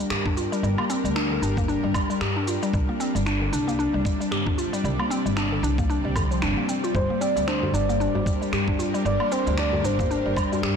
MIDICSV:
0, 0, Header, 1, 7, 480
1, 0, Start_track
1, 0, Key_signature, -2, "minor"
1, 0, Tempo, 526316
1, 576, Time_signature, 4, 2, 24, 8
1, 9816, End_track
2, 0, Start_track
2, 0, Title_t, "Soft synth lead"
2, 0, Program_c, 0, 80
2, 6332, Note_on_c, 0, 72, 108
2, 6557, Note_off_c, 0, 72, 0
2, 6573, Note_on_c, 0, 74, 105
2, 6798, Note_off_c, 0, 74, 0
2, 6815, Note_on_c, 0, 72, 88
2, 7055, Note_on_c, 0, 74, 92
2, 7068, Note_off_c, 0, 72, 0
2, 7536, Note_off_c, 0, 74, 0
2, 8255, Note_on_c, 0, 74, 115
2, 8499, Note_on_c, 0, 72, 100
2, 8513, Note_off_c, 0, 74, 0
2, 8744, Note_on_c, 0, 74, 101
2, 8758, Note_off_c, 0, 72, 0
2, 8983, Note_on_c, 0, 72, 88
2, 8996, Note_off_c, 0, 74, 0
2, 9460, Note_off_c, 0, 72, 0
2, 9816, End_track
3, 0, Start_track
3, 0, Title_t, "Synth drone"
3, 0, Program_c, 1, 95
3, 0, Note_on_c, 1, 55, 77
3, 0, Note_on_c, 1, 62, 77
3, 0, Note_on_c, 1, 67, 72
3, 0, Note_on_c, 1, 70, 91
3, 2458, Note_off_c, 1, 62, 0
3, 2458, Note_off_c, 1, 67, 0
3, 2458, Note_off_c, 1, 70, 0
3, 2491, Note_on_c, 1, 62, 75
3, 2493, Note_on_c, 1, 48, 85
3, 2493, Note_on_c, 1, 74, 92
3, 4395, Note_off_c, 1, 62, 0
3, 4416, Note_on_c, 1, 60, 77
3, 6298, Note_off_c, 1, 48, 0
3, 6298, Note_off_c, 1, 74, 0
3, 6317, Note_off_c, 1, 60, 0
3, 6342, Note_on_c, 1, 70, 93
3, 6343, Note_on_c, 1, 62, 80
3, 6343, Note_on_c, 1, 67, 81
3, 9816, Note_off_c, 1, 55, 0
3, 9816, Note_off_c, 1, 62, 0
3, 9816, Note_off_c, 1, 67, 0
3, 9816, Note_off_c, 1, 70, 0
3, 9816, End_track
4, 0, Start_track
4, 0, Title_t, "Synth pluck"
4, 0, Program_c, 2, 84
4, 96, Note_on_c, 2, 67, 86
4, 228, Note_off_c, 2, 67, 0
4, 236, Note_on_c, 2, 62, 78
4, 327, Note_off_c, 2, 62, 0
4, 339, Note_on_c, 2, 65, 78
4, 469, Note_off_c, 2, 65, 0
4, 476, Note_on_c, 2, 55, 100
4, 566, Note_off_c, 2, 55, 0
4, 577, Note_on_c, 2, 55, 103
4, 656, Note_off_c, 2, 55, 0
4, 716, Note_on_c, 2, 58, 80
4, 812, Note_off_c, 2, 58, 0
4, 819, Note_on_c, 2, 60, 104
4, 942, Note_off_c, 2, 60, 0
4, 955, Note_on_c, 2, 55, 77
4, 1013, Note_off_c, 2, 55, 0
4, 1057, Note_on_c, 2, 62, 80
4, 1181, Note_off_c, 2, 62, 0
4, 1195, Note_on_c, 2, 50, 78
4, 1292, Note_off_c, 2, 50, 0
4, 1298, Note_on_c, 2, 62, 102
4, 1428, Note_off_c, 2, 62, 0
4, 1436, Note_on_c, 2, 58, 82
4, 1527, Note_off_c, 2, 58, 0
4, 1535, Note_on_c, 2, 62, 104
4, 1615, Note_off_c, 2, 62, 0
4, 1675, Note_on_c, 2, 55, 75
4, 1763, Note_off_c, 2, 55, 0
4, 1774, Note_on_c, 2, 55, 79
4, 1900, Note_off_c, 2, 55, 0
4, 1913, Note_on_c, 2, 55, 78
4, 1972, Note_off_c, 2, 55, 0
4, 2015, Note_on_c, 2, 67, 87
4, 2147, Note_off_c, 2, 67, 0
4, 2156, Note_on_c, 2, 62, 78
4, 2247, Note_off_c, 2, 62, 0
4, 2256, Note_on_c, 2, 65, 78
4, 2388, Note_off_c, 2, 65, 0
4, 2395, Note_on_c, 2, 55, 105
4, 2486, Note_off_c, 2, 55, 0
4, 2497, Note_on_c, 2, 55, 103
4, 2575, Note_off_c, 2, 55, 0
4, 2635, Note_on_c, 2, 58, 76
4, 2731, Note_off_c, 2, 58, 0
4, 2736, Note_on_c, 2, 60, 100
4, 2861, Note_off_c, 2, 60, 0
4, 2872, Note_on_c, 2, 55, 78
4, 2931, Note_off_c, 2, 55, 0
4, 2974, Note_on_c, 2, 62, 81
4, 3100, Note_off_c, 2, 62, 0
4, 3114, Note_on_c, 2, 50, 73
4, 3211, Note_off_c, 2, 50, 0
4, 3216, Note_on_c, 2, 62, 106
4, 3348, Note_off_c, 2, 62, 0
4, 3353, Note_on_c, 2, 58, 80
4, 3445, Note_off_c, 2, 58, 0
4, 3455, Note_on_c, 2, 62, 102
4, 3535, Note_off_c, 2, 62, 0
4, 3595, Note_on_c, 2, 55, 77
4, 3684, Note_off_c, 2, 55, 0
4, 3695, Note_on_c, 2, 55, 78
4, 3820, Note_off_c, 2, 55, 0
4, 3835, Note_on_c, 2, 55, 75
4, 3893, Note_off_c, 2, 55, 0
4, 3934, Note_on_c, 2, 67, 84
4, 4067, Note_off_c, 2, 67, 0
4, 4074, Note_on_c, 2, 62, 74
4, 4166, Note_off_c, 2, 62, 0
4, 4175, Note_on_c, 2, 65, 77
4, 4307, Note_off_c, 2, 65, 0
4, 4314, Note_on_c, 2, 55, 103
4, 4405, Note_off_c, 2, 55, 0
4, 4416, Note_on_c, 2, 55, 103
4, 4495, Note_off_c, 2, 55, 0
4, 4554, Note_on_c, 2, 58, 80
4, 4651, Note_off_c, 2, 58, 0
4, 4655, Note_on_c, 2, 60, 103
4, 4780, Note_off_c, 2, 60, 0
4, 4794, Note_on_c, 2, 55, 73
4, 4852, Note_off_c, 2, 55, 0
4, 4897, Note_on_c, 2, 62, 76
4, 5021, Note_off_c, 2, 62, 0
4, 5035, Note_on_c, 2, 50, 74
4, 5131, Note_off_c, 2, 50, 0
4, 5136, Note_on_c, 2, 62, 106
4, 5267, Note_off_c, 2, 62, 0
4, 5275, Note_on_c, 2, 58, 76
4, 5366, Note_off_c, 2, 58, 0
4, 5377, Note_on_c, 2, 62, 108
4, 5455, Note_off_c, 2, 62, 0
4, 5517, Note_on_c, 2, 55, 75
4, 5607, Note_off_c, 2, 55, 0
4, 5618, Note_on_c, 2, 50, 81
4, 5696, Note_off_c, 2, 50, 0
4, 5754, Note_on_c, 2, 53, 74
4, 5851, Note_off_c, 2, 53, 0
4, 5858, Note_on_c, 2, 62, 86
4, 5981, Note_off_c, 2, 62, 0
4, 5995, Note_on_c, 2, 58, 73
4, 6091, Note_off_c, 2, 58, 0
4, 6097, Note_on_c, 2, 60, 75
4, 6221, Note_off_c, 2, 60, 0
4, 6236, Note_on_c, 2, 65, 75
4, 6332, Note_off_c, 2, 65, 0
4, 6340, Note_on_c, 2, 55, 106
4, 6417, Note_off_c, 2, 55, 0
4, 6476, Note_on_c, 2, 58, 75
4, 6572, Note_off_c, 2, 58, 0
4, 6577, Note_on_c, 2, 60, 105
4, 6701, Note_off_c, 2, 60, 0
4, 6717, Note_on_c, 2, 55, 82
4, 6774, Note_off_c, 2, 55, 0
4, 6819, Note_on_c, 2, 62, 80
4, 6942, Note_off_c, 2, 62, 0
4, 6956, Note_on_c, 2, 50, 71
4, 7052, Note_off_c, 2, 50, 0
4, 7057, Note_on_c, 2, 62, 101
4, 7188, Note_off_c, 2, 62, 0
4, 7198, Note_on_c, 2, 58, 85
4, 7288, Note_off_c, 2, 58, 0
4, 7298, Note_on_c, 2, 62, 104
4, 7376, Note_off_c, 2, 62, 0
4, 7435, Note_on_c, 2, 55, 73
4, 7526, Note_off_c, 2, 55, 0
4, 7537, Note_on_c, 2, 55, 78
4, 7661, Note_off_c, 2, 55, 0
4, 7675, Note_on_c, 2, 55, 73
4, 7733, Note_off_c, 2, 55, 0
4, 7777, Note_on_c, 2, 67, 84
4, 7908, Note_off_c, 2, 67, 0
4, 7916, Note_on_c, 2, 62, 77
4, 8007, Note_off_c, 2, 62, 0
4, 8017, Note_on_c, 2, 65, 78
4, 8148, Note_off_c, 2, 65, 0
4, 8154, Note_on_c, 2, 55, 103
4, 8247, Note_off_c, 2, 55, 0
4, 8258, Note_on_c, 2, 55, 105
4, 8336, Note_off_c, 2, 55, 0
4, 8397, Note_on_c, 2, 58, 75
4, 8492, Note_off_c, 2, 58, 0
4, 8498, Note_on_c, 2, 60, 105
4, 8622, Note_off_c, 2, 60, 0
4, 8640, Note_on_c, 2, 55, 80
4, 8695, Note_off_c, 2, 55, 0
4, 8739, Note_on_c, 2, 62, 80
4, 8862, Note_off_c, 2, 62, 0
4, 8876, Note_on_c, 2, 50, 76
4, 8972, Note_off_c, 2, 50, 0
4, 8977, Note_on_c, 2, 62, 105
4, 9108, Note_off_c, 2, 62, 0
4, 9115, Note_on_c, 2, 58, 81
4, 9206, Note_off_c, 2, 58, 0
4, 9217, Note_on_c, 2, 62, 99
4, 9295, Note_off_c, 2, 62, 0
4, 9355, Note_on_c, 2, 55, 81
4, 9446, Note_off_c, 2, 55, 0
4, 9457, Note_on_c, 2, 55, 77
4, 9581, Note_off_c, 2, 55, 0
4, 9596, Note_on_c, 2, 55, 75
4, 9653, Note_off_c, 2, 55, 0
4, 9697, Note_on_c, 2, 67, 85
4, 9816, Note_off_c, 2, 67, 0
4, 9816, End_track
5, 0, Start_track
5, 0, Title_t, "Upright bass"
5, 0, Program_c, 3, 32
5, 94, Note_on_c, 3, 43, 73
5, 413, Note_off_c, 3, 43, 0
5, 576, Note_on_c, 3, 31, 92
5, 676, Note_off_c, 3, 31, 0
5, 951, Note_on_c, 3, 38, 83
5, 1250, Note_off_c, 3, 38, 0
5, 1295, Note_on_c, 3, 31, 90
5, 1613, Note_off_c, 3, 31, 0
5, 1675, Note_on_c, 3, 31, 87
5, 1749, Note_off_c, 3, 31, 0
5, 2016, Note_on_c, 3, 43, 77
5, 2334, Note_off_c, 3, 43, 0
5, 2494, Note_on_c, 3, 36, 98
5, 2595, Note_off_c, 3, 36, 0
5, 2874, Note_on_c, 3, 31, 85
5, 3172, Note_off_c, 3, 31, 0
5, 3214, Note_on_c, 3, 36, 94
5, 3533, Note_off_c, 3, 36, 0
5, 3593, Note_on_c, 3, 36, 84
5, 3668, Note_off_c, 3, 36, 0
5, 3935, Note_on_c, 3, 31, 77
5, 4253, Note_off_c, 3, 31, 0
5, 4414, Note_on_c, 3, 36, 96
5, 4515, Note_off_c, 3, 36, 0
5, 4795, Note_on_c, 3, 31, 83
5, 5092, Note_off_c, 3, 31, 0
5, 5132, Note_on_c, 3, 36, 90
5, 5452, Note_off_c, 3, 36, 0
5, 5513, Note_on_c, 3, 36, 88
5, 5854, Note_on_c, 3, 31, 74
5, 5868, Note_off_c, 3, 36, 0
5, 5956, Note_off_c, 3, 31, 0
5, 6335, Note_on_c, 3, 31, 96
5, 6436, Note_off_c, 3, 31, 0
5, 6716, Note_on_c, 3, 38, 80
5, 7012, Note_off_c, 3, 38, 0
5, 7053, Note_on_c, 3, 31, 90
5, 7373, Note_off_c, 3, 31, 0
5, 7435, Note_on_c, 3, 31, 79
5, 7509, Note_off_c, 3, 31, 0
5, 7776, Note_on_c, 3, 43, 77
5, 8094, Note_off_c, 3, 43, 0
5, 8255, Note_on_c, 3, 31, 96
5, 8356, Note_off_c, 3, 31, 0
5, 8635, Note_on_c, 3, 38, 82
5, 8932, Note_off_c, 3, 38, 0
5, 8975, Note_on_c, 3, 31, 91
5, 9293, Note_off_c, 3, 31, 0
5, 9353, Note_on_c, 3, 31, 84
5, 9428, Note_off_c, 3, 31, 0
5, 9693, Note_on_c, 3, 43, 80
5, 9816, Note_off_c, 3, 43, 0
5, 9816, End_track
6, 0, Start_track
6, 0, Title_t, "Djembe"
6, 6709, Note_on_c, 9, 62, 45
6, 6800, Note_off_c, 9, 62, 0
6, 6958, Note_on_c, 9, 64, 82
6, 6961, Note_on_c, 9, 62, 35
6, 7049, Note_off_c, 9, 64, 0
6, 7052, Note_off_c, 9, 62, 0
6, 7200, Note_on_c, 9, 62, 32
6, 7291, Note_off_c, 9, 62, 0
6, 7428, Note_on_c, 9, 64, 78
6, 7435, Note_on_c, 9, 63, 61
6, 7520, Note_off_c, 9, 64, 0
6, 7526, Note_off_c, 9, 63, 0
6, 8015, Note_on_c, 9, 63, 59
6, 8106, Note_off_c, 9, 63, 0
6, 8164, Note_on_c, 9, 62, 30
6, 8255, Note_off_c, 9, 62, 0
6, 8629, Note_on_c, 9, 63, 58
6, 8630, Note_on_c, 9, 62, 49
6, 8720, Note_off_c, 9, 63, 0
6, 8722, Note_off_c, 9, 62, 0
6, 8872, Note_on_c, 9, 64, 78
6, 8963, Note_off_c, 9, 64, 0
6, 9111, Note_on_c, 9, 62, 33
6, 9202, Note_off_c, 9, 62, 0
6, 9599, Note_on_c, 9, 63, 61
6, 9606, Note_on_c, 9, 64, 77
6, 9690, Note_off_c, 9, 63, 0
6, 9697, Note_off_c, 9, 64, 0
6, 9816, End_track
7, 0, Start_track
7, 0, Title_t, "Drums"
7, 94, Note_on_c, 9, 26, 111
7, 100, Note_on_c, 9, 69, 33
7, 186, Note_off_c, 9, 26, 0
7, 191, Note_off_c, 9, 69, 0
7, 234, Note_on_c, 9, 36, 108
7, 325, Note_off_c, 9, 36, 0
7, 340, Note_on_c, 9, 69, 77
7, 432, Note_off_c, 9, 69, 0
7, 481, Note_on_c, 9, 69, 43
7, 572, Note_off_c, 9, 69, 0
7, 583, Note_on_c, 9, 69, 34
7, 674, Note_off_c, 9, 69, 0
7, 714, Note_on_c, 9, 77, 61
7, 805, Note_off_c, 9, 77, 0
7, 821, Note_on_c, 9, 69, 75
7, 912, Note_off_c, 9, 69, 0
7, 960, Note_on_c, 9, 69, 47
7, 1051, Note_off_c, 9, 69, 0
7, 1058, Note_on_c, 9, 26, 102
7, 1064, Note_on_c, 9, 69, 32
7, 1149, Note_off_c, 9, 26, 0
7, 1155, Note_off_c, 9, 69, 0
7, 1304, Note_on_c, 9, 69, 79
7, 1395, Note_off_c, 9, 69, 0
7, 1433, Note_on_c, 9, 36, 104
7, 1441, Note_on_c, 9, 69, 42
7, 1524, Note_off_c, 9, 36, 0
7, 1532, Note_off_c, 9, 69, 0
7, 1541, Note_on_c, 9, 69, 36
7, 1632, Note_off_c, 9, 69, 0
7, 1773, Note_on_c, 9, 77, 84
7, 1774, Note_on_c, 9, 36, 106
7, 1779, Note_on_c, 9, 69, 75
7, 1864, Note_off_c, 9, 77, 0
7, 1865, Note_off_c, 9, 36, 0
7, 1870, Note_off_c, 9, 69, 0
7, 1919, Note_on_c, 9, 69, 45
7, 2010, Note_off_c, 9, 69, 0
7, 2015, Note_on_c, 9, 26, 109
7, 2021, Note_on_c, 9, 69, 35
7, 2107, Note_off_c, 9, 26, 0
7, 2113, Note_off_c, 9, 69, 0
7, 2259, Note_on_c, 9, 69, 80
7, 2350, Note_off_c, 9, 69, 0
7, 2397, Note_on_c, 9, 69, 47
7, 2488, Note_off_c, 9, 69, 0
7, 2494, Note_on_c, 9, 36, 123
7, 2501, Note_on_c, 9, 69, 34
7, 2586, Note_off_c, 9, 36, 0
7, 2592, Note_off_c, 9, 69, 0
7, 2741, Note_on_c, 9, 69, 75
7, 2832, Note_off_c, 9, 69, 0
7, 2881, Note_on_c, 9, 69, 47
7, 2972, Note_off_c, 9, 69, 0
7, 2978, Note_on_c, 9, 26, 102
7, 2984, Note_on_c, 9, 69, 36
7, 3069, Note_off_c, 9, 26, 0
7, 3075, Note_off_c, 9, 69, 0
7, 3221, Note_on_c, 9, 69, 84
7, 3313, Note_off_c, 9, 69, 0
7, 3362, Note_on_c, 9, 69, 45
7, 3453, Note_off_c, 9, 69, 0
7, 3464, Note_on_c, 9, 69, 35
7, 3555, Note_off_c, 9, 69, 0
7, 3694, Note_on_c, 9, 36, 111
7, 3704, Note_on_c, 9, 69, 81
7, 3785, Note_off_c, 9, 36, 0
7, 3795, Note_off_c, 9, 69, 0
7, 3843, Note_on_c, 9, 69, 47
7, 3934, Note_off_c, 9, 69, 0
7, 3939, Note_on_c, 9, 26, 104
7, 3945, Note_on_c, 9, 69, 34
7, 4030, Note_off_c, 9, 26, 0
7, 4036, Note_off_c, 9, 69, 0
7, 4073, Note_on_c, 9, 36, 113
7, 4164, Note_off_c, 9, 36, 0
7, 4182, Note_on_c, 9, 69, 79
7, 4273, Note_off_c, 9, 69, 0
7, 4320, Note_on_c, 9, 69, 48
7, 4411, Note_off_c, 9, 69, 0
7, 4422, Note_on_c, 9, 69, 34
7, 4513, Note_off_c, 9, 69, 0
7, 4556, Note_on_c, 9, 77, 55
7, 4647, Note_off_c, 9, 77, 0
7, 4663, Note_on_c, 9, 69, 79
7, 4754, Note_off_c, 9, 69, 0
7, 4800, Note_on_c, 9, 69, 44
7, 4892, Note_off_c, 9, 69, 0
7, 4895, Note_on_c, 9, 26, 97
7, 4901, Note_on_c, 9, 69, 36
7, 4986, Note_off_c, 9, 26, 0
7, 4992, Note_off_c, 9, 69, 0
7, 5143, Note_on_c, 9, 69, 78
7, 5235, Note_off_c, 9, 69, 0
7, 5274, Note_on_c, 9, 36, 108
7, 5281, Note_on_c, 9, 69, 44
7, 5365, Note_off_c, 9, 36, 0
7, 5372, Note_off_c, 9, 69, 0
7, 5383, Note_on_c, 9, 69, 34
7, 5474, Note_off_c, 9, 69, 0
7, 5614, Note_on_c, 9, 77, 73
7, 5615, Note_on_c, 9, 36, 112
7, 5620, Note_on_c, 9, 69, 81
7, 5706, Note_off_c, 9, 36, 0
7, 5706, Note_off_c, 9, 77, 0
7, 5711, Note_off_c, 9, 69, 0
7, 5760, Note_on_c, 9, 69, 45
7, 5851, Note_off_c, 9, 69, 0
7, 5856, Note_on_c, 9, 26, 103
7, 5862, Note_on_c, 9, 69, 36
7, 5947, Note_off_c, 9, 26, 0
7, 5953, Note_off_c, 9, 69, 0
7, 6101, Note_on_c, 9, 69, 80
7, 6192, Note_off_c, 9, 69, 0
7, 6239, Note_on_c, 9, 69, 47
7, 6331, Note_off_c, 9, 69, 0
7, 6335, Note_on_c, 9, 36, 126
7, 6344, Note_on_c, 9, 69, 33
7, 6426, Note_off_c, 9, 36, 0
7, 6435, Note_off_c, 9, 69, 0
7, 6581, Note_on_c, 9, 69, 77
7, 6672, Note_off_c, 9, 69, 0
7, 6720, Note_on_c, 9, 69, 43
7, 6811, Note_off_c, 9, 69, 0
7, 6819, Note_on_c, 9, 26, 92
7, 6825, Note_on_c, 9, 69, 34
7, 6910, Note_off_c, 9, 26, 0
7, 6916, Note_off_c, 9, 69, 0
7, 7064, Note_on_c, 9, 69, 76
7, 7155, Note_off_c, 9, 69, 0
7, 7202, Note_on_c, 9, 69, 43
7, 7293, Note_off_c, 9, 69, 0
7, 7305, Note_on_c, 9, 69, 34
7, 7396, Note_off_c, 9, 69, 0
7, 7535, Note_on_c, 9, 36, 112
7, 7543, Note_on_c, 9, 69, 79
7, 7626, Note_off_c, 9, 36, 0
7, 7634, Note_off_c, 9, 69, 0
7, 7682, Note_on_c, 9, 69, 42
7, 7773, Note_off_c, 9, 69, 0
7, 7778, Note_on_c, 9, 26, 102
7, 7784, Note_on_c, 9, 69, 35
7, 7869, Note_off_c, 9, 26, 0
7, 7875, Note_off_c, 9, 69, 0
7, 7913, Note_on_c, 9, 36, 107
7, 8004, Note_off_c, 9, 36, 0
7, 8023, Note_on_c, 9, 69, 83
7, 8114, Note_off_c, 9, 69, 0
7, 8160, Note_on_c, 9, 69, 47
7, 8251, Note_off_c, 9, 69, 0
7, 8261, Note_on_c, 9, 69, 32
7, 8352, Note_off_c, 9, 69, 0
7, 8391, Note_on_c, 9, 77, 61
7, 8482, Note_off_c, 9, 77, 0
7, 8499, Note_on_c, 9, 69, 75
7, 8590, Note_off_c, 9, 69, 0
7, 8636, Note_on_c, 9, 69, 46
7, 8727, Note_off_c, 9, 69, 0
7, 8733, Note_on_c, 9, 26, 100
7, 8739, Note_on_c, 9, 69, 31
7, 8824, Note_off_c, 9, 26, 0
7, 8830, Note_off_c, 9, 69, 0
7, 8981, Note_on_c, 9, 69, 78
7, 9072, Note_off_c, 9, 69, 0
7, 9112, Note_on_c, 9, 36, 102
7, 9120, Note_on_c, 9, 69, 42
7, 9203, Note_off_c, 9, 36, 0
7, 9211, Note_off_c, 9, 69, 0
7, 9222, Note_on_c, 9, 69, 35
7, 9313, Note_off_c, 9, 69, 0
7, 9453, Note_on_c, 9, 36, 97
7, 9456, Note_on_c, 9, 77, 77
7, 9462, Note_on_c, 9, 69, 73
7, 9544, Note_off_c, 9, 36, 0
7, 9547, Note_off_c, 9, 77, 0
7, 9553, Note_off_c, 9, 69, 0
7, 9601, Note_on_c, 9, 69, 43
7, 9693, Note_off_c, 9, 69, 0
7, 9698, Note_on_c, 9, 26, 103
7, 9704, Note_on_c, 9, 69, 32
7, 9789, Note_off_c, 9, 26, 0
7, 9795, Note_off_c, 9, 69, 0
7, 9816, End_track
0, 0, End_of_file